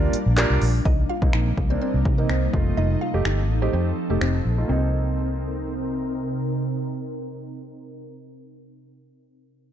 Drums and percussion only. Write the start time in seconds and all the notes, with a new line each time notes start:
0.13 closed hi-hat
0.37 clap, closed hi-hat
0.62 open hi-hat
0.85 kick
1.22 kick
1.33 finger snap
1.58 kick
2.05 kick
2.30 finger snap
2.53 kick
3.25 finger snap
4.21 finger snap